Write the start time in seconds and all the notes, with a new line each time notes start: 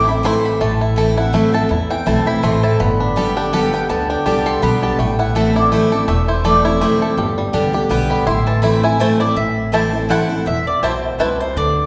Already playing: A1 A2
0.07 C4 E4 B5
0.23 E3 A3 C4 E4 C6
0.45 B5
0.61 A1 A2 A3 A5
0.81 E4
0.96 E3 A3 C4 E4 A4
1.17 C4 E4 F#5
1.33 E3 A3 C4 E4 E5
1.52 C4 E4 A4 A5
1.69 E2 E4
1.90 E3 G5
2.06 B1 E3 A3 C4 E4 A5
2.26 C4 E4 B5
2.43 A1 E3 A3 C4 E4 C6
2.63 E4 A5
2.80 G1 G2 B3 B5
3.00 D4
3.16 D3 G3 B3 G4 A4
3.36 B3 D4 G4 G5
3.53 D3 G3 B3 G4 A4 F#5
3.73 B3 G4 G5
3.89 D2 D3 B3 A5
4.10 D4 G5
4.26 C2 D3 G3 B3 G4 A5
4.46 A4 C6
4.62 B1 D3 G3 B3 G4 B5
4.83 G4 A5
4.99 A1 A2 A3 G5
5.19 E4 F#5
5.35 E3 A3 C4 E4 A4 E5
5.56 C4 E4 D5
5.72 E3 A3 C4 E4 C5
5.92 C4 E4 A4 D5
6.08 E1 E2 A3 E5
6.28 E4 C5
6.44 E3 A3 C4 E4 A4 D5
6.65 C4 E4 C#5
6.81 E3 A3 C4 E4 C5
7.01 C4 E4 A4
7.17 G1 G2 G4
7.38 G3
7.53 C2 D3 G3 B3 D4 G4
7.73 B3 G4
7.89 B1 D3 G3 B3 G4
8.10 G4 B5
8.27 A1 A2 E4 C6
8.47 E3 A5
8.62 E3 A3 C4 E4 B5
8.83 C4 E4 G#5
8.99 E3 A3 C4 E4 C5 A5
9.20 C4 E4 D5
9.36 A1 A2 E5
9.72 E3 A3 C4 E4 C5 A5
9.93 C4 E4
10.09 E3 A3 C4 E4 C5 F#5 A5
10.29 C4 E4
10.46 E1 E2 E5
10.67 D5
10.82 B1 B2 A3 C4 E4 C5 A5
11.19 C2 C3 A3 C4 E4 B4 C5 A5
11.40 C5
11.56 D2 D3 D5